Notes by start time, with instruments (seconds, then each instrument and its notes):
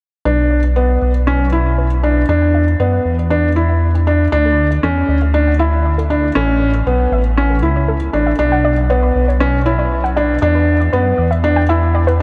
0.25 detuned saw bass B1, felt piano D4, synth arpeggio sound B4
0.51 synth arpeggio sound C#5
0.64 synth arpeggio sound D5
0.76 felt piano B3
0.89 synth arpeggio sound F#5
1.02 detuned saw bass B1, synth arpeggio sound D5
1.27 felt piano C#4, synth arpeggio sound C#5
1.40 synth arpeggio sound B4
1.52 felt piano E4
1.65 synth arpeggio sound C#5
1.78 synth arpeggio sound B4
2.03 felt piano D4, synth arpeggio sound C#5
2.16 synth arpeggio sound D5
2.29 detuned saw bass E2, felt piano D4
2.42 synth arpeggio sound G5
2.55 synth arpeggio sound E5
2.80 detuned saw bass F#2, felt piano B3, synth arpeggio sound D5
2.93 synth arpeggio sound B4
3.05 detuned saw bass E2
3.18 synth arpeggio sound D5
3.30 felt piano D4, synth arpeggio sound B4
3.56 felt piano E4, synth arpeggio sound D5
3.69 synth arpeggio sound E5
3.95 synth arpeggio sound G5
4.07 felt piano D4, synth arpeggio sound E5
4.32 detuned saw bass D2, felt piano D4, synth arpeggio sound D5
4.45 synth arpeggio sound A4
4.71 synth arpeggio sound D5
4.83 detuned saw bass E2, felt piano C#4, synth arpeggio sound A4
5.09 detuned saw bass D2, synth arpeggio sound D5
5.22 synth arpeggio sound E5
5.34 felt piano D4
5.47 synth arpeggio sound F#5
5.59 felt piano E4, synth arpeggio sound E5
5.85 synth arpeggio sound D5
5.98 synth arpeggio sound A4
6.10 felt piano D4
6.24 synth arpeggio sound D5
6.35 detuned saw bass A1, felt piano C#4, synth arpeggio sound A4
6.62 synth arpeggio sound C#5
6.74 synth arpeggio sound E5
6.87 detuned saw bass B1, felt piano B3
6.99 synth arpeggio sound F#5
7.12 detuned saw bass A1, synth arpeggio sound E5
7.37 felt piano C#4, synth arpeggio sound C#5
7.50 synth arpeggio sound A4
7.62 detuned saw bass C#2, felt piano E4
7.76 synth arpeggio sound C#5
7.88 synth arpeggio sound A4
8.13 detuned saw bass A1, felt piano D4, synth arpeggio sound C#5
8.27 synth arpeggio sound E5
8.39 detuned saw bass B1, felt piano D4
8.52 synth arpeggio sound F#5
8.65 synth arpeggio sound D5
8.90 felt piano B3, synth arpeggio sound C#5
9.03 synth arpeggio sound B4
9.16 detuned saw bass B1
9.28 synth arpeggio sound C#5
9.40 felt piano C#4, synth arpeggio sound B4
9.66 felt piano E4, synth arpeggio sound C#5
9.79 synth arpeggio sound D5
10.04 synth arpeggio sound F#5
10.16 felt piano D4, synth arpeggio sound D5
10.42 detuned saw bass E2, felt piano D4, synth arpeggio sound D5
10.55 synth arpeggio sound B4
10.80 synth arpeggio sound D5
10.93 detuned saw bass F#2, felt piano B3, synth arpeggio sound B4
11.18 detuned saw bass E2, synth arpeggio sound D5
11.31 synth arpeggio sound E5
11.44 felt piano D4
11.56 synth arpeggio sound G5
11.69 felt piano E4, synth arpeggio sound E5
11.95 synth arpeggio sound D5
12.07 synth arpeggio sound B4